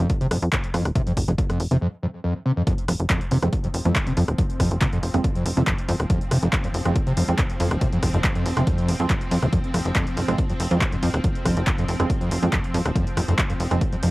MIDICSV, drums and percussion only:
0, 0, Header, 1, 2, 480
1, 0, Start_track
1, 0, Key_signature, -4, "minor"
1, 0, Tempo, 428571
1, 1071, Time_signature, 4, 2, 24, 8
1, 15800, End_track
2, 0, Start_track
2, 0, Title_t, "Drums"
2, 109, Note_on_c, 9, 42, 85
2, 110, Note_on_c, 9, 36, 112
2, 221, Note_off_c, 9, 42, 0
2, 222, Note_off_c, 9, 36, 0
2, 236, Note_on_c, 9, 42, 50
2, 348, Note_off_c, 9, 42, 0
2, 349, Note_on_c, 9, 37, 98
2, 349, Note_on_c, 9, 46, 100
2, 461, Note_off_c, 9, 37, 0
2, 461, Note_off_c, 9, 46, 0
2, 475, Note_on_c, 9, 42, 51
2, 587, Note_off_c, 9, 42, 0
2, 588, Note_on_c, 9, 39, 119
2, 588, Note_on_c, 9, 42, 90
2, 589, Note_on_c, 9, 36, 111
2, 700, Note_off_c, 9, 39, 0
2, 700, Note_off_c, 9, 42, 0
2, 701, Note_off_c, 9, 36, 0
2, 715, Note_on_c, 9, 42, 55
2, 827, Note_off_c, 9, 42, 0
2, 829, Note_on_c, 9, 37, 84
2, 829, Note_on_c, 9, 46, 86
2, 941, Note_off_c, 9, 37, 0
2, 941, Note_off_c, 9, 46, 0
2, 956, Note_on_c, 9, 37, 91
2, 956, Note_on_c, 9, 42, 52
2, 1068, Note_off_c, 9, 37, 0
2, 1068, Note_off_c, 9, 42, 0
2, 1069, Note_on_c, 9, 36, 113
2, 1070, Note_on_c, 9, 42, 96
2, 1181, Note_off_c, 9, 36, 0
2, 1182, Note_off_c, 9, 42, 0
2, 1196, Note_on_c, 9, 42, 58
2, 1308, Note_off_c, 9, 42, 0
2, 1309, Note_on_c, 9, 36, 59
2, 1310, Note_on_c, 9, 46, 105
2, 1421, Note_off_c, 9, 36, 0
2, 1422, Note_off_c, 9, 46, 0
2, 1437, Note_on_c, 9, 42, 54
2, 1549, Note_off_c, 9, 42, 0
2, 1549, Note_on_c, 9, 36, 117
2, 1550, Note_on_c, 9, 42, 95
2, 1661, Note_off_c, 9, 36, 0
2, 1662, Note_off_c, 9, 42, 0
2, 1677, Note_on_c, 9, 37, 86
2, 1677, Note_on_c, 9, 42, 55
2, 1789, Note_off_c, 9, 37, 0
2, 1789, Note_off_c, 9, 42, 0
2, 1790, Note_on_c, 9, 46, 88
2, 1902, Note_off_c, 9, 46, 0
2, 1916, Note_on_c, 9, 42, 55
2, 2028, Note_off_c, 9, 42, 0
2, 2989, Note_on_c, 9, 36, 117
2, 2990, Note_on_c, 9, 42, 98
2, 3101, Note_off_c, 9, 36, 0
2, 3102, Note_off_c, 9, 42, 0
2, 3116, Note_on_c, 9, 42, 57
2, 3228, Note_off_c, 9, 42, 0
2, 3229, Note_on_c, 9, 37, 85
2, 3229, Note_on_c, 9, 46, 112
2, 3341, Note_off_c, 9, 37, 0
2, 3341, Note_off_c, 9, 46, 0
2, 3356, Note_on_c, 9, 42, 56
2, 3468, Note_off_c, 9, 42, 0
2, 3469, Note_on_c, 9, 39, 127
2, 3469, Note_on_c, 9, 42, 99
2, 3470, Note_on_c, 9, 36, 126
2, 3581, Note_off_c, 9, 39, 0
2, 3581, Note_off_c, 9, 42, 0
2, 3582, Note_off_c, 9, 36, 0
2, 3596, Note_on_c, 9, 42, 57
2, 3708, Note_off_c, 9, 42, 0
2, 3709, Note_on_c, 9, 46, 87
2, 3821, Note_off_c, 9, 46, 0
2, 3836, Note_on_c, 9, 37, 80
2, 3836, Note_on_c, 9, 42, 56
2, 3948, Note_off_c, 9, 37, 0
2, 3948, Note_off_c, 9, 42, 0
2, 3950, Note_on_c, 9, 36, 110
2, 3951, Note_on_c, 9, 42, 91
2, 4062, Note_off_c, 9, 36, 0
2, 4063, Note_off_c, 9, 42, 0
2, 4076, Note_on_c, 9, 42, 54
2, 4188, Note_off_c, 9, 42, 0
2, 4190, Note_on_c, 9, 46, 105
2, 4302, Note_off_c, 9, 46, 0
2, 4315, Note_on_c, 9, 42, 56
2, 4427, Note_off_c, 9, 42, 0
2, 4430, Note_on_c, 9, 36, 116
2, 4430, Note_on_c, 9, 39, 126
2, 4430, Note_on_c, 9, 42, 93
2, 4542, Note_off_c, 9, 36, 0
2, 4542, Note_off_c, 9, 39, 0
2, 4542, Note_off_c, 9, 42, 0
2, 4556, Note_on_c, 9, 42, 58
2, 4668, Note_off_c, 9, 42, 0
2, 4669, Note_on_c, 9, 46, 96
2, 4781, Note_off_c, 9, 46, 0
2, 4796, Note_on_c, 9, 37, 85
2, 4796, Note_on_c, 9, 42, 57
2, 4908, Note_off_c, 9, 37, 0
2, 4908, Note_off_c, 9, 42, 0
2, 4910, Note_on_c, 9, 36, 117
2, 4910, Note_on_c, 9, 42, 95
2, 5022, Note_off_c, 9, 36, 0
2, 5022, Note_off_c, 9, 42, 0
2, 5037, Note_on_c, 9, 42, 61
2, 5149, Note_off_c, 9, 42, 0
2, 5150, Note_on_c, 9, 36, 66
2, 5150, Note_on_c, 9, 37, 82
2, 5150, Note_on_c, 9, 46, 110
2, 5262, Note_off_c, 9, 36, 0
2, 5262, Note_off_c, 9, 37, 0
2, 5262, Note_off_c, 9, 46, 0
2, 5277, Note_on_c, 9, 42, 56
2, 5389, Note_off_c, 9, 42, 0
2, 5391, Note_on_c, 9, 36, 126
2, 5391, Note_on_c, 9, 39, 118
2, 5391, Note_on_c, 9, 42, 100
2, 5503, Note_off_c, 9, 36, 0
2, 5503, Note_off_c, 9, 39, 0
2, 5503, Note_off_c, 9, 42, 0
2, 5518, Note_on_c, 9, 42, 58
2, 5630, Note_off_c, 9, 42, 0
2, 5632, Note_on_c, 9, 46, 91
2, 5744, Note_off_c, 9, 46, 0
2, 5757, Note_on_c, 9, 37, 79
2, 5757, Note_on_c, 9, 42, 57
2, 5869, Note_off_c, 9, 37, 0
2, 5869, Note_off_c, 9, 42, 0
2, 5870, Note_on_c, 9, 36, 116
2, 5872, Note_on_c, 9, 42, 92
2, 5982, Note_off_c, 9, 36, 0
2, 5984, Note_off_c, 9, 42, 0
2, 5997, Note_on_c, 9, 42, 57
2, 6109, Note_off_c, 9, 42, 0
2, 6111, Note_on_c, 9, 46, 114
2, 6223, Note_off_c, 9, 46, 0
2, 6238, Note_on_c, 9, 42, 56
2, 6350, Note_off_c, 9, 42, 0
2, 6351, Note_on_c, 9, 36, 121
2, 6351, Note_on_c, 9, 39, 121
2, 6351, Note_on_c, 9, 42, 94
2, 6463, Note_off_c, 9, 36, 0
2, 6463, Note_off_c, 9, 39, 0
2, 6463, Note_off_c, 9, 42, 0
2, 6478, Note_on_c, 9, 42, 56
2, 6590, Note_off_c, 9, 42, 0
2, 6591, Note_on_c, 9, 46, 101
2, 6703, Note_off_c, 9, 46, 0
2, 6717, Note_on_c, 9, 37, 87
2, 6717, Note_on_c, 9, 42, 55
2, 6829, Note_off_c, 9, 37, 0
2, 6829, Note_off_c, 9, 42, 0
2, 6830, Note_on_c, 9, 42, 98
2, 6831, Note_on_c, 9, 36, 123
2, 6942, Note_off_c, 9, 42, 0
2, 6943, Note_off_c, 9, 36, 0
2, 6958, Note_on_c, 9, 42, 57
2, 7070, Note_off_c, 9, 42, 0
2, 7070, Note_on_c, 9, 37, 84
2, 7070, Note_on_c, 9, 46, 110
2, 7182, Note_off_c, 9, 37, 0
2, 7182, Note_off_c, 9, 46, 0
2, 7197, Note_on_c, 9, 42, 54
2, 7309, Note_off_c, 9, 42, 0
2, 7310, Note_on_c, 9, 39, 114
2, 7310, Note_on_c, 9, 42, 96
2, 7311, Note_on_c, 9, 36, 127
2, 7422, Note_off_c, 9, 39, 0
2, 7422, Note_off_c, 9, 42, 0
2, 7423, Note_off_c, 9, 36, 0
2, 7437, Note_on_c, 9, 42, 57
2, 7549, Note_off_c, 9, 42, 0
2, 7551, Note_on_c, 9, 46, 93
2, 7663, Note_off_c, 9, 46, 0
2, 7677, Note_on_c, 9, 37, 87
2, 7677, Note_on_c, 9, 42, 55
2, 7789, Note_off_c, 9, 37, 0
2, 7789, Note_off_c, 9, 42, 0
2, 7790, Note_on_c, 9, 42, 96
2, 7791, Note_on_c, 9, 36, 118
2, 7902, Note_off_c, 9, 42, 0
2, 7903, Note_off_c, 9, 36, 0
2, 7916, Note_on_c, 9, 42, 53
2, 8028, Note_off_c, 9, 42, 0
2, 8030, Note_on_c, 9, 46, 115
2, 8142, Note_off_c, 9, 46, 0
2, 8155, Note_on_c, 9, 42, 55
2, 8267, Note_off_c, 9, 42, 0
2, 8269, Note_on_c, 9, 39, 114
2, 8269, Note_on_c, 9, 42, 95
2, 8270, Note_on_c, 9, 36, 121
2, 8381, Note_off_c, 9, 39, 0
2, 8381, Note_off_c, 9, 42, 0
2, 8382, Note_off_c, 9, 36, 0
2, 8396, Note_on_c, 9, 42, 56
2, 8508, Note_off_c, 9, 42, 0
2, 8510, Note_on_c, 9, 46, 101
2, 8622, Note_off_c, 9, 46, 0
2, 8636, Note_on_c, 9, 37, 93
2, 8636, Note_on_c, 9, 42, 57
2, 8748, Note_off_c, 9, 37, 0
2, 8748, Note_off_c, 9, 42, 0
2, 8749, Note_on_c, 9, 42, 91
2, 8750, Note_on_c, 9, 36, 120
2, 8861, Note_off_c, 9, 42, 0
2, 8862, Note_off_c, 9, 36, 0
2, 8876, Note_on_c, 9, 42, 58
2, 8988, Note_off_c, 9, 42, 0
2, 8989, Note_on_c, 9, 37, 91
2, 8989, Note_on_c, 9, 46, 117
2, 8990, Note_on_c, 9, 36, 64
2, 9101, Note_off_c, 9, 37, 0
2, 9101, Note_off_c, 9, 46, 0
2, 9102, Note_off_c, 9, 36, 0
2, 9117, Note_on_c, 9, 42, 54
2, 9229, Note_off_c, 9, 42, 0
2, 9230, Note_on_c, 9, 36, 127
2, 9230, Note_on_c, 9, 39, 119
2, 9230, Note_on_c, 9, 42, 86
2, 9342, Note_off_c, 9, 36, 0
2, 9342, Note_off_c, 9, 39, 0
2, 9342, Note_off_c, 9, 42, 0
2, 9357, Note_on_c, 9, 42, 55
2, 9469, Note_off_c, 9, 42, 0
2, 9471, Note_on_c, 9, 46, 98
2, 9583, Note_off_c, 9, 46, 0
2, 9596, Note_on_c, 9, 37, 90
2, 9596, Note_on_c, 9, 42, 55
2, 9708, Note_off_c, 9, 37, 0
2, 9708, Note_off_c, 9, 42, 0
2, 9710, Note_on_c, 9, 36, 116
2, 9710, Note_on_c, 9, 42, 91
2, 9822, Note_off_c, 9, 36, 0
2, 9822, Note_off_c, 9, 42, 0
2, 9836, Note_on_c, 9, 42, 51
2, 9948, Note_off_c, 9, 42, 0
2, 9951, Note_on_c, 9, 46, 114
2, 10063, Note_off_c, 9, 46, 0
2, 10077, Note_on_c, 9, 42, 52
2, 10189, Note_off_c, 9, 42, 0
2, 10190, Note_on_c, 9, 36, 125
2, 10191, Note_on_c, 9, 39, 110
2, 10191, Note_on_c, 9, 42, 95
2, 10302, Note_off_c, 9, 36, 0
2, 10303, Note_off_c, 9, 39, 0
2, 10303, Note_off_c, 9, 42, 0
2, 10317, Note_on_c, 9, 42, 52
2, 10429, Note_off_c, 9, 42, 0
2, 10431, Note_on_c, 9, 46, 106
2, 10543, Note_off_c, 9, 46, 0
2, 10556, Note_on_c, 9, 37, 93
2, 10556, Note_on_c, 9, 42, 54
2, 10668, Note_off_c, 9, 37, 0
2, 10668, Note_off_c, 9, 42, 0
2, 10669, Note_on_c, 9, 36, 110
2, 10670, Note_on_c, 9, 42, 90
2, 10781, Note_off_c, 9, 36, 0
2, 10782, Note_off_c, 9, 42, 0
2, 10796, Note_on_c, 9, 42, 52
2, 10908, Note_off_c, 9, 42, 0
2, 10910, Note_on_c, 9, 37, 87
2, 10910, Note_on_c, 9, 46, 109
2, 11022, Note_off_c, 9, 37, 0
2, 11022, Note_off_c, 9, 46, 0
2, 11037, Note_on_c, 9, 42, 49
2, 11149, Note_off_c, 9, 42, 0
2, 11149, Note_on_c, 9, 36, 116
2, 11150, Note_on_c, 9, 39, 116
2, 11150, Note_on_c, 9, 42, 88
2, 11261, Note_off_c, 9, 36, 0
2, 11262, Note_off_c, 9, 39, 0
2, 11262, Note_off_c, 9, 42, 0
2, 11277, Note_on_c, 9, 42, 53
2, 11389, Note_off_c, 9, 42, 0
2, 11391, Note_on_c, 9, 46, 90
2, 11503, Note_off_c, 9, 46, 0
2, 11518, Note_on_c, 9, 37, 88
2, 11518, Note_on_c, 9, 42, 51
2, 11630, Note_off_c, 9, 37, 0
2, 11630, Note_off_c, 9, 42, 0
2, 11630, Note_on_c, 9, 36, 118
2, 11630, Note_on_c, 9, 42, 84
2, 11742, Note_off_c, 9, 36, 0
2, 11742, Note_off_c, 9, 42, 0
2, 11756, Note_on_c, 9, 42, 49
2, 11868, Note_off_c, 9, 42, 0
2, 11870, Note_on_c, 9, 46, 106
2, 11982, Note_off_c, 9, 46, 0
2, 11997, Note_on_c, 9, 42, 53
2, 12109, Note_off_c, 9, 42, 0
2, 12110, Note_on_c, 9, 36, 121
2, 12110, Note_on_c, 9, 39, 115
2, 12110, Note_on_c, 9, 42, 86
2, 12222, Note_off_c, 9, 36, 0
2, 12222, Note_off_c, 9, 39, 0
2, 12222, Note_off_c, 9, 42, 0
2, 12237, Note_on_c, 9, 42, 52
2, 12349, Note_off_c, 9, 42, 0
2, 12350, Note_on_c, 9, 46, 101
2, 12462, Note_off_c, 9, 46, 0
2, 12477, Note_on_c, 9, 37, 103
2, 12477, Note_on_c, 9, 42, 51
2, 12589, Note_off_c, 9, 37, 0
2, 12589, Note_off_c, 9, 42, 0
2, 12589, Note_on_c, 9, 42, 94
2, 12590, Note_on_c, 9, 36, 107
2, 12701, Note_off_c, 9, 42, 0
2, 12702, Note_off_c, 9, 36, 0
2, 12717, Note_on_c, 9, 42, 50
2, 12829, Note_off_c, 9, 42, 0
2, 12830, Note_on_c, 9, 36, 56
2, 12830, Note_on_c, 9, 37, 89
2, 12830, Note_on_c, 9, 46, 106
2, 12942, Note_off_c, 9, 36, 0
2, 12942, Note_off_c, 9, 37, 0
2, 12942, Note_off_c, 9, 46, 0
2, 12957, Note_on_c, 9, 42, 51
2, 13069, Note_off_c, 9, 42, 0
2, 13070, Note_on_c, 9, 36, 116
2, 13070, Note_on_c, 9, 39, 119
2, 13070, Note_on_c, 9, 42, 90
2, 13182, Note_off_c, 9, 36, 0
2, 13182, Note_off_c, 9, 39, 0
2, 13182, Note_off_c, 9, 42, 0
2, 13198, Note_on_c, 9, 42, 49
2, 13310, Note_off_c, 9, 42, 0
2, 13311, Note_on_c, 9, 46, 89
2, 13423, Note_off_c, 9, 46, 0
2, 13438, Note_on_c, 9, 37, 89
2, 13438, Note_on_c, 9, 42, 51
2, 13550, Note_off_c, 9, 37, 0
2, 13550, Note_off_c, 9, 42, 0
2, 13550, Note_on_c, 9, 36, 113
2, 13552, Note_on_c, 9, 42, 85
2, 13662, Note_off_c, 9, 36, 0
2, 13664, Note_off_c, 9, 42, 0
2, 13678, Note_on_c, 9, 42, 49
2, 13790, Note_off_c, 9, 42, 0
2, 13792, Note_on_c, 9, 46, 102
2, 13904, Note_off_c, 9, 46, 0
2, 13918, Note_on_c, 9, 42, 51
2, 14030, Note_off_c, 9, 42, 0
2, 14030, Note_on_c, 9, 36, 117
2, 14032, Note_on_c, 9, 39, 114
2, 14032, Note_on_c, 9, 42, 85
2, 14142, Note_off_c, 9, 36, 0
2, 14144, Note_off_c, 9, 39, 0
2, 14144, Note_off_c, 9, 42, 0
2, 14159, Note_on_c, 9, 42, 53
2, 14271, Note_off_c, 9, 42, 0
2, 14273, Note_on_c, 9, 46, 93
2, 14385, Note_off_c, 9, 46, 0
2, 14398, Note_on_c, 9, 37, 102
2, 14398, Note_on_c, 9, 42, 54
2, 14510, Note_off_c, 9, 37, 0
2, 14510, Note_off_c, 9, 42, 0
2, 14510, Note_on_c, 9, 36, 112
2, 14512, Note_on_c, 9, 42, 90
2, 14622, Note_off_c, 9, 36, 0
2, 14624, Note_off_c, 9, 42, 0
2, 14638, Note_on_c, 9, 42, 56
2, 14750, Note_off_c, 9, 42, 0
2, 14751, Note_on_c, 9, 37, 88
2, 14751, Note_on_c, 9, 46, 105
2, 14863, Note_off_c, 9, 37, 0
2, 14863, Note_off_c, 9, 46, 0
2, 14878, Note_on_c, 9, 42, 54
2, 14990, Note_off_c, 9, 42, 0
2, 14990, Note_on_c, 9, 36, 120
2, 14991, Note_on_c, 9, 39, 127
2, 14991, Note_on_c, 9, 42, 87
2, 15102, Note_off_c, 9, 36, 0
2, 15103, Note_off_c, 9, 39, 0
2, 15103, Note_off_c, 9, 42, 0
2, 15117, Note_on_c, 9, 42, 54
2, 15229, Note_off_c, 9, 42, 0
2, 15231, Note_on_c, 9, 46, 87
2, 15343, Note_off_c, 9, 46, 0
2, 15357, Note_on_c, 9, 37, 90
2, 15357, Note_on_c, 9, 42, 53
2, 15469, Note_off_c, 9, 37, 0
2, 15469, Note_off_c, 9, 42, 0
2, 15470, Note_on_c, 9, 36, 107
2, 15470, Note_on_c, 9, 42, 89
2, 15582, Note_off_c, 9, 36, 0
2, 15582, Note_off_c, 9, 42, 0
2, 15597, Note_on_c, 9, 42, 50
2, 15709, Note_off_c, 9, 42, 0
2, 15710, Note_on_c, 9, 46, 105
2, 15800, Note_off_c, 9, 46, 0
2, 15800, End_track
0, 0, End_of_file